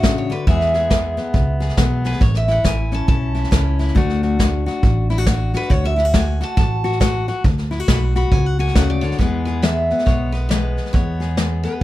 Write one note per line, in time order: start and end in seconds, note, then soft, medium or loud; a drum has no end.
0.00 0.30 A1 medium
0.00 0.30 C#3 medium
0.00 0.45 D4 medium
0.00 0.45 F#4 medium
0.00 0.15 E5 loud
0.00 kick medium
0.00 snare loud
0.00 hi-hat pedal medium
0.18 0.32 C#5 medium
0.30 0.47 D3 medium
0.30 0.46 B4 medium
0.30 snare soft
0.47 1.17 E2 medium
0.47 0.87 E2 medium
0.47 0.90 E3 medium
0.47 2.20 G#3 medium
0.47 1.16 B3 medium
0.47 0.73 G#4 medium
0.47 1.74 E5 medium
0.47 kick loud
0.47 snare soft
0.61 snare soft
0.74 1.59 G#4 medium
0.74 snare soft
0.90 1.31 E3 medium
0.90 kick medium
0.90 snare loud
0.90 hi-hat pedal medium
1.17 1.77 B3 medium
1.17 snare soft
1.34 1.71 C#2 medium
1.34 1.74 B2 medium
1.34 kick loud
1.34 snare soft
1.60 2.04 G#4 medium
1.60 snare soft
1.69 snare soft
1.77 2.15 B1 medium
1.77 2.18 E3 medium
1.77 2.21 B3 medium
1.77 kick medium
1.77 snare loud
1.77 hi-hat pedal medium
2.04 2.19 G#4 medium
2.04 2.21 B4 loud
2.04 snare soft
2.12 snare soft
2.21 2.56 A1 medium
2.21 2.61 A2 medium
2.21 2.35 C#5 medium
2.21 kick loud
2.21 snare soft
2.34 2.51 E5 medium
2.34 snare soft
2.48 3.33 E4 medium
2.48 2.65 F#5 medium
2.48 snare soft
2.64 3.02 A1 medium
2.64 3.05 E3 medium
2.64 2.94 G#5 medium
2.64 kick medium
2.64 snare loud
2.64 hi-hat pedal medium
2.91 3.51 C#4 medium
2.91 3.07 A5 medium
2.91 snare soft
3.08 3.45 B1 medium
3.08 3.48 E2 medium
3.08 3.93 A5 medium
3.08 kick loud
3.08 snare soft
3.35 3.78 E4 medium
3.35 snare soft
3.44 snare soft
3.51 3.89 C#2 medium
3.51 3.92 E3 medium
3.51 3.93 C#4 medium
3.51 kick medium
3.51 snare loud
3.51 hi-hat pedal medium
3.79 3.96 E4 medium
3.79 snare soft
3.88 snare soft
3.95 4.66 D2 loud
3.95 4.35 D3 medium
3.95 4.39 A3 medium
3.95 5.99 D4 medium
3.95 4.23 F#4 medium
3.95 kick loud
3.95 snare soft
4.09 snare soft
4.23 4.66 F#4 medium
4.23 snare soft
4.39 4.79 A3 medium
4.39 kick medium
4.39 snare loud
4.39 hi-hat pedal medium
4.66 5.10 F#4 medium
4.66 snare soft
4.83 5.53 A1 medium
4.83 5.23 A2 medium
4.83 kick loud
4.83 snare soft
5.10 5.18 E4 medium
5.10 snare soft
5.18 5.26 F#4 medium
5.18 snare soft
5.26 5.67 A3 medium
5.26 5.54 F#4 medium
5.26 kick medium
5.26 snare loud
5.26 hi-hat pedal medium
5.53 5.96 F#4 medium
5.53 5.71 B4 loud
5.53 snare soft
5.62 snare soft
5.70 6.41 D2 loud
5.70 6.10 D3 medium
5.70 5.85 C#5 loud
5.70 kick loud
5.70 snare soft
5.84 5.99 E5 loud
5.84 snare soft
5.96 6.05 E4 medium
5.96 6.15 F#5 medium
5.96 snare soft
6.05 6.40 F#4 medium
6.14 6.54 A3 medium
6.14 6.43 G#5 medium
6.14 kick medium
6.14 snare loud
6.14 hi-hat pedal medium
6.41 6.83 F#4 medium
6.41 6.56 A5 medium
6.41 snare soft
6.57 7.28 A1 medium
6.57 6.97 A2 medium
6.57 7.42 A5 loud
6.57 kick loud
6.57 snare soft
6.84 7.00 F#4 medium
6.84 snare soft
6.92 snare soft
7.00 7.41 A3 medium
7.00 7.27 F#4 medium
7.00 kick loud
7.00 snare loud
7.00 hi-hat pedal medium
7.28 7.43 F#4 medium
7.28 snare soft
7.44 7.80 D2 loud
7.44 7.85 D3 medium
7.44 kick loud
7.44 snare soft
7.58 snare soft
7.71 7.80 E4 medium
7.71 snare soft
7.80 8.15 F#4 medium
7.88 8.25 B1 medium
7.88 8.29 A3 medium
7.88 8.02 B5 loud
7.88 kick medium
7.88 snare loud
7.88 hi-hat pedal medium
8.15 8.58 F#4 medium
8.15 8.32 B5 medium
8.15 snare soft
8.32 8.69 C#2 medium
8.32 8.72 A2 medium
8.32 8.46 G#5 medium
8.32 kick loud
8.32 snare soft
8.46 8.60 F#5 loud
8.59 9.17 F#4 medium
8.59 8.76 G#5 medium
8.59 snare soft
8.67 snare soft
8.75 9.12 D2 medium
8.75 9.02 C#3 medium
8.75 8.90 F#5 loud
8.75 kick medium
8.75 snare loud
8.75 hi-hat pedal medium
8.90 9.18 D5 medium
9.01 9.19 D3 medium
9.01 9.19 C#5 medium
9.01 snare soft
9.11 snare soft
9.18 9.59 E2 medium
9.18 9.90 E2 medium
9.18 9.63 E3 medium
9.18 10.07 G#3 medium
9.18 9.91 B3 medium
9.18 9.46 G#4 medium
9.18 9.44 B4 medium
9.18 kick loud
9.18 snare soft
9.45 11.20 G#4 medium
9.45 9.61 B4 medium
9.45 snare soft
9.62 10.03 E3 medium
9.62 10.05 E5 medium
9.62 snare loud
9.62 hi-hat pedal medium
9.90 10.33 B3 medium
9.90 snare soft
9.99 snare soft
10.06 10.77 B1 medium
10.06 10.47 B2 medium
10.06 10.51 G#3 medium
10.06 10.34 C#5 medium
10.06 kick loud
10.06 snare soft
10.32 10.93 B3 medium
10.32 10.48 B4 medium
10.32 snare soft
10.49 10.91 E3 medium
10.49 11.82 G#3 medium
10.49 10.94 B4 medium
10.49 snare loud
10.49 hi-hat pedal medium
10.77 snare soft
10.86 snare soft
10.93 11.34 E2 medium
10.93 11.65 E2 medium
10.93 11.64 B3 medium
10.93 11.66 C#5 medium
10.93 kick loud
10.93 snare soft
11.20 11.83 G#4 medium
11.20 snare soft
11.37 11.78 E3 medium
11.37 snare loud
11.37 hi-hat pedal medium
11.63 11.83 B3 medium
11.63 11.83 B4 medium
11.63 snare soft